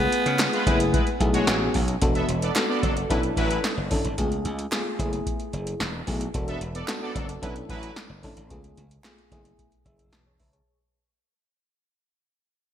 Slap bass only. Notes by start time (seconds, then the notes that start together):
0.26 C#3
0.66 F#1
1.20 B1
1.48 A1
1.75 B1
2.02 E1
2.29 E1
2.83 F#1
3.10 B1
3.37 A1
3.77 F#1
3.91 F#1
4.04 G#1
4.18 C#2
4.45 C#2
4.99 F#1
5.53 F#1
5.80 E1
6.08 B1
6.34 E1
6.61 E1
7.15 F#1
7.42 B1
7.69 A1
8.10 F#1
8.24 F#1
8.37 G#1
8.50 C#2
8.77 C#2
9.31 F#1
9.85 F#1
10.13 E1
10.40 C#2